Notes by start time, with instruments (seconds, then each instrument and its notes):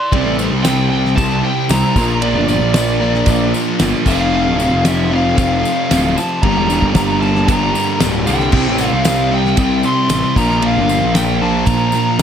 Already playing: lead electric guitar D5 C6
0.12 picked electric bass C2, overdriven electric guitar C3 G3 C4, distorted electric guitar C3 G3 C4 E4 G4 C5, kick, ride bell
0.25 picked electric bass A1
0.39 overdriven electric guitar C3 G3 C4, tambourine
0.52 picked electric bass C2
0.64 overdriven electric guitar C3 G3 C4, lead electric guitar G5, snare, ride bell, tambourine
0.90 overdriven electric guitar C3 G3 C4, lead electric guitar G5
1.05 snare
1.16 picked electric bass C2, overdriven electric guitar C3 G3 C4, distorted electric guitar C3 G3 C4 E4 G4 C5, lead electric guitar A5, kick, ride bell, tambourine
1.43 overdriven electric guitar C3 G3 C4, lead electric guitar G5
1.69 picked electric bass C2, overdriven electric guitar C3 G3 C4, lead electric guitar A#5, snare, ride bell, tambourine
1.95 picked electric bass A#1, distorted electric guitar A#2 F3 A#3 D4 F4 A#4, overdriven electric guitar A#2 F3 A#3, kick, tambourine
2.22 overdriven electric guitar A#2 F3 A#3, lead electric guitar D5, ride bell
2.34 picked electric bass G1
2.48 overdriven electric guitar A#2 F3 A#3, lead electric guitar D5, tambourine
2.61 picked electric bass A#1
2.74 overdriven electric guitar A#2 F3 A#3, snare, ride bell, tambourine
3.00 overdriven electric guitar A#2 F3 A#3, distorted electric guitar A#2 F3 A#3 D4 F4 A#4
3.14 snare
3.26 picked electric bass A#1, overdriven electric guitar A#2 F3 A#3, kick, ride bell, tambourine
3.54 overdriven electric guitar A#2 F3 A#3, tambourine
3.79 picked electric bass G1, overdriven electric guitar A#2 F3 A#3, snare, ride bell, tambourine
4.06 picked electric bass F1, distorted electric guitar F2 C3 F3 A3 C4 F4, overdriven electric guitar F2 C3 F3, lead electric guitar F5, kick, tambourine, crash
4.32 overdriven electric guitar F2 C3 F3
4.47 picked electric bass D1
4.58 overdriven electric guitar F2 C3 F3, tambourine
4.73 picked electric bass F1
4.84 overdriven electric guitar F2 C3 F3, lead electric guitar E5, snare, ride bell, tambourine
5.10 overdriven electric guitar F2 C3 F3, distorted electric guitar C3 F3 A3 C4 F4
5.14 distorted electric guitar F2, lead electric guitar F5
5.34 picked electric bass F1, overdriven electric guitar F2 C3 F3, lead electric guitar F5, kick, ride bell
5.39 tambourine
5.62 overdriven electric guitar F2 C3 F3, tambourine
5.89 picked electric bass D1, overdriven electric guitar F2 C3 F3, snare, ride bell, tambourine
5.95 overdriven electric guitar F3
6.16 overdriven electric guitar F2 C3 F3, lead electric guitar A5, tambourine
6.42 picked electric bass G1, overdriven electric guitar G2 D3 G3, distorted electric guitar G2 D3 G3 A#3 D4 G4, lead electric guitar A#5, kick, ride bell
6.58 picked electric bass E1
6.69 overdriven electric guitar G2 D3 G3, tambourine
6.82 picked electric bass G1, kick
6.94 overdriven electric guitar G2 D3 G3, kick, snare, ride bell, tambourine
7.19 overdriven electric guitar G2 D3 G3, lead electric guitar A5, tambourine
7.35 snare
7.47 picked electric bass G1, overdriven electric guitar G2 D3 G3, distorted electric guitar G2 D3 G3, lead electric guitar A#5, kick, ride bell, tambourine
7.51 distorted electric guitar A#3 D4 G4
7.73 overdriven electric guitar G2 D3 G3, tambourine
8.00 picked electric bass D1, overdriven electric guitar G2 D3 G3, snare, ride bell, tambourine
8.26 picked electric bass C2, overdriven electric guitar G2 D3 G3, lead electric guitar G5, tambourine
8.30 overdriven electric guitar G2
8.39 snare
8.52 picked electric bass C2, overdriven electric guitar C3 G3 C4, distorted electric guitar C3 G3 C4 E4 G4 C5, kick, crash
8.56 overdriven electric guitar C4
8.68 picked electric bass A1
8.78 overdriven electric guitar C3 G3 C4, tambourine
8.86 lead electric guitar F5
8.93 picked electric bass C2
9.04 overdriven electric guitar C3 G3 C4, lead electric guitar F5, snare, ride bell, tambourine
9.31 overdriven electric guitar C3 G3 C4, lead electric guitar G5
9.45 snare
9.55 picked electric bass C2, overdriven electric guitar C3 G3 C4, distorted electric guitar C3 G3 C4, lead electric guitar G5, kick, ride bell, tambourine
9.60 distorted electric guitar E4 G4 C5
9.83 overdriven electric guitar C3 G3 C4, lead electric guitar C6, tambourine
10.08 picked electric bass A1, overdriven electric guitar C3 G3 C4, lead electric guitar C6, snare, ride bell, tambourine
10.35 picked electric bass A#1, distorted electric guitar A#2 F3 A#3 D4 F4 A#4, overdriven electric guitar A#2 F3 A#3, lead electric guitar A#5, kick, tambourine
10.50 snare
10.61 overdriven electric guitar A#2 F3 A#3, lead electric guitar F5, ride bell
10.77 picked electric bass G1
10.87 overdriven electric guitar A#2 F3 A#3, tambourine
11.03 picked electric bass A#1
11.14 overdriven electric guitar A#2 F3 A#3, lead electric guitar G5, snare, ride bell, tambourine
11.41 overdriven electric guitar A#2 F3 A#3, distorted electric guitar A#2 F3 A#3 D4 F4 A#4, lead electric guitar A5
11.66 picked electric bass A#1, overdriven electric guitar A#2 F3 A#3, lead electric guitar A#5, kick, ride bell, tambourine
11.92 overdriven electric guitar A#2 F3 A#3, tambourine
12.19 overdriven electric guitar A#2